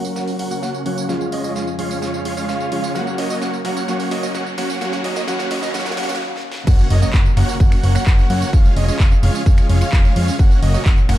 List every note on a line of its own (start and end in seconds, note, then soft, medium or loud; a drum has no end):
0.00 4.77 C#3 medium
0.00 0.85 F#3 medium
0.00 1.07 F#3 medium
0.00 0.12 A#3 medium
0.00 0.85 A#3 medium
0.00 1.07 A#3 medium
0.00 0.12 C#4 medium
0.00 0.86 C#4 medium
0.00 0.12 F#4 medium
0.00 0.86 F#4 loud
0.00 1.07 F#4 medium
0.00 1.07 A#4 medium
0.00 0.12 C#5 medium
0.00 0.12 F#5 medium
0.00 riser medium
0.05 tambourine medium
0.16 0.36 A#3 medium
0.16 0.36 C#4 medium
0.16 0.36 F#4 medium
0.16 0.36 C#5 medium
0.16 0.36 F#5 medium
0.16 snare soft
0.16 tambourine medium
0.28 open hi-hat medium
0.28 tambourine soft
0.39 0.48 A#3 medium
0.39 0.48 C#4 medium
0.39 0.48 F#4 medium
0.39 0.48 C#5 medium
0.39 0.48 F#5 loud
0.39 open hi-hat loud
0.51 0.60 A#3 loud
0.51 0.60 C#4 medium
0.51 0.60 F#4 medium
0.51 0.60 C#5 medium
0.51 0.60 F#5 loud
0.51 tambourine medium
0.62 0.83 A#3 medium
0.62 0.83 C#4 medium
0.62 0.83 F#4 medium
0.62 0.83 C#5 medium
0.62 0.83 F#5 loud
0.62 snare medium
0.62 tambourine medium
0.74 tambourine soft
0.85 1.06 F#3 medium
0.85 1.06 A#3 medium
0.85 1.06 C#4 medium
0.85 1.06 F#4 medium
0.85 1.06 F#4 loud
0.85 1.06 C#5 medium
0.85 1.06 F#5 loud
0.85 open hi-hat loud
0.98 tambourine medium
1.08 2.93 F2 medium
1.08 1.75 F3 medium
1.08 2.93 F3 medium
1.08 1.76 G#3 medium
1.08 2.93 G#3 medium
1.08 1.29 G#3 medium
1.08 1.29 C#4 medium
1.08 1.76 C#4 medium
1.08 1.29 F4 medium
1.08 2.93 F4 medium
1.08 1.77 F4 loud
1.08 2.93 G#4 medium
1.08 1.29 C#5 medium
1.08 1.29 F5 medium
1.08 1.29 F5 loud
1.08 snare medium
1.08 tambourine medium
1.21 tambourine soft
1.32 1.42 G#3 medium
1.32 1.42 C#4 medium
1.32 1.42 F4 medium
1.32 1.42 C#5 medium
1.32 1.42 D#5 medium
1.32 open hi-hat loud
1.44 1.53 G#3 medium
1.44 1.53 C#4 medium
1.44 1.53 F4 medium
1.44 1.53 C#5 medium
1.44 1.53 D#5 medium
1.44 1.53 D#5 loud
1.44 tambourine medium
1.55 1.68 G#3 medium
1.55 1.68 C#4 medium
1.55 1.67 F4 medium
1.55 1.68 C#5 medium
1.55 1.67 F5 medium
1.55 1.68 F5 medium
1.55 snare medium
1.55 tambourine medium
1.67 tambourine soft
1.77 2.68 F3 medium
1.77 2.69 G#3 medium
1.77 1.98 G#3 medium
1.77 1.98 C#4 medium
1.77 2.69 C#4 medium
1.77 1.98 F4 medium
1.77 2.70 F4 medium
1.77 1.98 C#5 medium
1.77 1.98 F5 loud
1.77 open hi-hat loud
1.91 tambourine medium
2.02 2.22 G#3 medium
2.02 2.22 C#4 medium
2.02 2.22 F4 medium
2.02 2.22 C#5 medium
2.02 2.22 F5 medium
2.02 snare medium
2.02 tambourine medium
2.14 tambourine soft
2.25 2.34 G#3 medium
2.25 2.34 C#4 medium
2.25 2.34 F4 medium
2.25 2.34 C#5 medium
2.25 2.34 F5 medium
2.25 2.34 F5 loud
2.25 open hi-hat loud
2.37 2.46 G#3 loud
2.37 2.46 C#4 medium
2.37 2.46 F4 medium
2.37 2.46 C#5 medium
2.37 2.46 F5 loud
2.37 tambourine medium
2.48 2.69 G#3 medium
2.48 2.69 C#4 medium
2.48 2.69 F4 medium
2.48 2.69 C#5 medium
2.48 2.69 F5 loud
2.48 snare medium
2.48 tambourine medium
2.60 tambourine soft
2.71 2.92 F3 loud
2.71 2.92 G#3 medium
2.71 2.92 C#4 medium
2.71 2.92 F4 medium
2.71 2.93 F4 loud
2.71 2.92 C#5 medium
2.71 2.92 F5 loud
2.71 open hi-hat loud
2.84 tambourine medium
2.94 3.61 F#3 medium
2.94 6.63 F#3 medium
2.94 3.62 A#3 medium
2.94 4.79 A#3 medium
2.94 3.15 A#3 medium
2.94 3.15 C#4 medium
2.94 3.62 C#4 medium
2.94 3.15 F#4 medium
2.94 6.63 F#4 medium
2.94 3.63 F#4 medium
2.94 4.79 A#4 medium
2.94 3.15 C#5 medium
2.94 3.15 F#5 medium
2.94 3.16 F#5 medium
2.94 snare medium
2.94 tambourine medium
3.07 tambourine soft
3.18 3.28 A#3 medium
3.18 3.28 C#4 medium
3.18 3.28 F#4 medium
3.18 3.28 C#5 medium
3.18 3.28 D#5 medium
3.18 snare medium
3.18 open hi-hat loud
3.30 3.39 A#3 medium
3.30 3.39 C#4 medium
3.30 3.39 F#4 medium
3.30 3.39 C#5 medium
3.30 3.39 D#5 loud
3.30 3.39 D#5 medium
3.30 tambourine medium
3.41 3.54 A#3 medium
3.41 3.54 C#4 medium
3.41 3.54 F#4 medium
3.41 3.54 C#5 medium
3.41 3.54 F#5 medium
3.41 snare medium
3.41 tambourine medium
3.53 tambourine soft
3.64 3.85 F#3 medium
3.64 3.86 A#3 medium
3.64 3.84 A#3 medium
3.64 3.84 C#4 medium
3.64 3.86 C#4 medium
3.64 3.84 F#4 medium
3.64 3.87 F#4 medium
3.64 3.84 C#5 medium
3.64 3.84 F#5 medium
3.64 snare medium
3.64 open hi-hat loud
3.77 tambourine medium
3.87 4.54 F#3 medium
3.87 4.55 A#3 medium
3.87 4.09 A#3 medium
3.87 4.09 C#4 medium
3.87 4.55 C#4 medium
3.87 4.08 F#4 medium
3.87 4.56 F#4 loud
3.87 4.09 C#5 medium
3.87 4.08 F#5 medium
3.87 4.09 F#5 medium
3.87 snare medium
3.87 tambourine medium
4.00 open hi-hat medium
4.00 tambourine soft
4.11 4.21 A#3 medium
4.11 4.21 C#4 medium
4.11 4.21 F#4 medium
4.11 4.21 C#5 medium
4.11 4.21 D#5 medium
4.11 snare medium
4.11 open hi-hat loud
4.23 4.32 A#3 medium
4.23 4.32 C#4 medium
4.23 4.32 F#4 medium
4.23 4.32 C#5 medium
4.23 4.32 D#5 loud
4.23 tambourine medium
4.34 4.47 A#3 medium
4.34 4.47 C#4 medium
4.34 4.47 F#4 medium
4.34 4.47 C#5 medium
4.34 4.47 F#5 medium
4.34 snare medium
4.34 tambourine medium
4.46 tambourine soft
4.57 4.78 F#3 medium
4.57 4.79 A#3 medium
4.57 4.77 A#3 medium
4.57 4.77 C#4 medium
4.57 4.79 C#4 medium
4.57 4.77 F#4 medium
4.57 4.80 F#4 medium
4.57 4.77 C#5 medium
4.57 4.77 F#5 medium
4.57 snare medium
4.57 open hi-hat loud
4.70 tambourine medium
4.80 6.65 D#3 medium
4.80 5.25 F#3 medium
4.80 5.26 A#3 medium
4.80 5.02 A#3 medium
4.80 5.02 C#4 medium
4.80 5.26 C#4 medium
4.80 5.02 F#4 medium
4.80 5.26 F#4 loud
4.80 5.02 C#5 medium
4.80 5.02 F#5 loud
4.80 5.02 F#5 medium
4.80 6.65 B5 medium
4.80 snare medium
4.80 tambourine medium
4.93 snare medium
4.93 tambourine soft
5.04 5.14 A#3 medium
5.04 5.14 C#4 medium
5.04 5.14 F#4 medium
5.04 5.14 C#5 medium
5.04 5.14 D#5 medium
5.04 snare medium
5.04 open hi-hat loud
5.16 5.25 A#3 medium
5.16 5.25 C#4 medium
5.16 5.25 F#4 medium
5.16 5.25 C#5 medium
5.16 5.25 D#5 loud
5.16 snare medium
5.16 tambourine medium
5.26 5.71 F#3 loud
5.26 5.72 A#3 medium
5.26 5.48 A#3 medium
5.26 5.48 C#4 medium
5.26 5.72 C#4 medium
5.26 5.48 F#4 medium
5.26 5.73 F#4 loud
5.26 5.48 C#5 medium
5.26 5.48 F#5 loud
5.26 snare loud
5.26 tambourine medium
5.39 snare medium
5.39 tambourine soft
5.51 5.61 A#3 medium
5.51 5.61 C#4 medium
5.51 5.61 F#4 medium
5.51 5.61 C#5 medium
5.51 5.61 D#5 medium
5.51 snare loud
5.51 open hi-hat loud
5.62 5.71 A#3 medium
5.62 5.71 C#4 medium
5.62 5.71 F#4 medium
5.62 5.71 C#5 medium
5.62 5.71 D#5 loud
5.62 snare medium
5.62 tambourine medium
5.73 5.95 F#3 loud
5.73 5.95 A#3 medium
5.73 5.95 C#4 medium
5.73 5.96 C#4 medium
5.73 5.95 F#4 medium
5.73 5.96 F#4 loud
5.73 5.95 C#5 medium
5.73 5.95 F#5 loud
5.73 snare loud
5.73 tambourine medium
5.80 snare medium
5.86 snare loud
5.86 tambourine soft
5.91 snare loud
5.96 6.18 F#3 loud
5.96 6.19 A#3 medium
5.96 6.18 A#3 medium
5.96 6.18 C#4 medium
5.96 6.19 C#4 medium
5.96 6.18 F#4 medium
5.96 6.19 F#4 loud
5.96 6.18 C#5 medium
5.96 6.18 F#5 loud
5.96 snare loud
5.96 open hi-hat loud
6.03 snare loud
6.09 snare medium
6.09 tambourine medium
6.15 snare medium
6.20 snare medium
6.36 snare medium
6.52 snare loud
6.67 6.81 F#1 loud
6.67 11.18 C#3 medium
6.67 8.51 F#3 medium
6.67 6.88 A#3 medium
6.67 8.51 A#3 medium
6.67 6.88 C#4 medium
6.67 6.88 F#4 medium
6.67 8.51 F#4 medium
6.67 8.51 A#4 medium
6.67 6.88 C#5 medium
6.67 6.88 F#5 loud
6.67 6.88 F#5 medium
6.67 kick loud
6.67 crash loud
6.67 tambourine medium
6.67 impact medium
6.79 tambourine soft
6.90 7.05 F#1 medium
6.90 7.00 A#3 medium
6.90 7.00 C#4 medium
6.90 7.00 F#4 medium
6.90 7.00 C#5 medium
6.90 7.00 D#5 medium
6.90 open hi-hat loud
7.02 7.11 A#3 medium
7.02 7.11 C#4 medium
7.02 7.11 F#4 medium
7.02 7.11 C#5 medium
7.02 7.11 D#5 loud
7.02 tambourine medium
7.13 7.28 F#1 medium
7.13 7.26 A#3 medium
7.13 7.26 C#4 medium
7.13 7.26 F#4 medium
7.13 7.26 C#5 medium
7.13 7.26 F#5 medium
7.13 kick loud
7.13 clap loud
7.13 tambourine medium
7.26 tambourine soft
7.37 7.44 F#1 loud
7.37 7.56 A#3 medium
7.37 7.56 C#4 medium
7.37 7.56 F#4 medium
7.37 7.56 C#5 medium
7.37 7.56 F#5 loud
7.37 finger snap medium
7.37 open hi-hat loud
7.49 tambourine medium
7.60 7.74 F#1 loud
7.60 7.81 A#3 medium
7.60 7.81 C#4 medium
7.60 7.81 F#4 medium
7.60 7.81 C#5 medium
7.60 7.81 F#5 medium
7.60 kick loud
7.60 tambourine medium
7.72 finger snap medium
7.72 open hi-hat medium
7.72 tambourine soft
7.83 7.98 F#1 medium
7.83 7.92 A#3 medium
7.83 7.92 C#4 medium
7.83 7.92 F#4 medium
7.83 7.92 C#5 medium
7.83 7.92 F#5 loud
7.83 open hi-hat loud
7.95 8.04 A#3 loud
7.95 8.04 C#4 medium
7.95 8.04 F#4 medium
7.95 8.04 C#5 medium
7.95 8.04 F#5 loud
7.95 finger snap medium
7.95 tambourine medium
8.07 8.21 F#1 medium
8.07 8.27 A#3 medium
8.07 8.27 C#4 medium
8.07 8.27 F#4 medium
8.07 8.27 C#5 medium
8.07 8.27 F#5 loud
8.07 kick loud
8.07 clap loud
8.07 tambourine medium
8.19 tambourine soft
8.30 8.44 F#2 medium
8.30 8.50 A#3 medium
8.30 8.50 C#4 medium
8.30 8.50 F#4 medium
8.30 8.50 C#5 medium
8.30 8.50 F#5 loud
8.30 open hi-hat loud
8.42 tambourine medium
8.53 8.67 F1 loud
8.53 10.37 F3 medium
8.53 8.74 G#3 medium
8.53 10.37 G#3 medium
8.53 8.74 C#4 medium
8.53 10.37 F4 medium
8.53 8.74 F4 medium
8.53 10.37 G#4 medium
8.53 8.74 C#5 medium
8.53 8.74 F5 loud
8.53 kick loud
8.53 tambourine medium
8.65 tambourine soft
8.76 8.91 F1 medium
8.76 8.86 G#3 medium
8.76 8.86 C#4 medium
8.76 8.86 F4 medium
8.76 8.86 C#5 medium
8.76 8.86 D#5 medium
8.76 open hi-hat loud
8.88 8.97 G#3 loud
8.88 8.97 C#4 medium
8.88 8.97 F4 medium
8.88 8.97 C#5 medium
8.88 8.97 D#5 loud
8.88 tambourine medium
9.00 9.14 F1 medium
9.00 9.12 G#3 medium
9.00 9.12 C#4 medium
9.00 9.12 F4 medium
9.00 9.12 C#5 medium
9.00 9.12 F5 medium
9.00 kick loud
9.00 clap loud
9.00 tambourine medium
9.12 tambourine soft
9.23 9.30 F1 loud
9.23 9.42 G#3 medium
9.23 9.42 C#4 medium
9.23 9.42 F4 medium
9.23 9.42 C#5 medium
9.23 9.42 F5 loud
9.23 open hi-hat loud
9.35 tambourine medium
9.46 9.60 F1 loud
9.46 9.67 G#3 medium
9.46 9.67 C#4 medium
9.46 9.67 F4 medium
9.46 9.67 C#5 medium
9.46 9.67 F5 medium
9.46 kick loud
9.46 tambourine medium
9.58 finger snap medium
9.58 tambourine soft
9.69 9.84 F1 medium
9.69 9.78 G#3 medium
9.69 9.78 C#4 medium
9.69 9.78 F4 medium
9.69 9.78 C#5 medium
9.69 9.78 F5 loud
9.69 open hi-hat loud
9.81 9.90 G#3 loud
9.81 9.90 C#4 medium
9.81 9.90 F4 medium
9.81 9.90 C#5 medium
9.81 9.90 F5 loud
9.81 finger snap medium
9.81 tambourine medium
9.93 10.07 F1 medium
9.93 10.13 G#3 loud
9.93 10.13 C#4 medium
9.93 10.13 F4 medium
9.93 10.13 C#5 medium
9.93 10.13 F5 loud
9.93 kick loud
9.93 clap loud
9.93 tambourine medium
10.05 tambourine soft
10.16 10.30 F2 medium
10.16 10.36 G#3 medium
10.16 10.36 C#4 medium
10.16 10.36 F4 medium
10.16 10.36 C#5 medium
10.16 10.36 F5 loud
10.16 open hi-hat loud
10.28 tambourine medium
10.39 10.53 F#1 loud
10.39 11.18 A#2 medium
10.39 11.18 F#3 medium
10.39 10.60 A#3 medium
10.39 11.18 C#4 medium
10.39 10.60 C#4 medium
10.39 10.60 F#4 medium
10.39 11.18 F#4 medium
10.39 10.60 C#5 medium
10.39 10.60 F#5 loud
10.39 kick loud
10.39 tambourine medium
10.51 tambourine soft
10.62 10.77 F#1 medium
10.62 10.72 A#3 medium
10.62 10.72 C#4 medium
10.62 10.72 F#4 medium
10.62 10.72 C#5 medium
10.62 10.72 D#5 medium
10.62 open hi-hat loud
10.74 10.83 A#3 loud
10.74 10.83 C#4 medium
10.74 10.83 F#4 medium
10.74 10.83 C#5 medium
10.74 10.83 D#5 loud
10.74 tambourine medium
10.86 11.00 F#1 medium
10.86 10.98 A#3 medium
10.86 10.98 C#4 medium
10.86 10.98 F#4 medium
10.86 10.98 C#5 medium
10.86 10.98 F#5 medium
10.86 kick loud
10.86 clap loud
10.86 tambourine medium
10.98 tambourine soft
11.09 11.16 F#1 loud
11.09 11.18 A#3 medium
11.09 11.18 C#4 medium
11.09 11.18 F#4 medium
11.09 11.18 C#5 medium
11.09 11.18 F#5 loud
11.09 finger snap medium
11.09 open hi-hat loud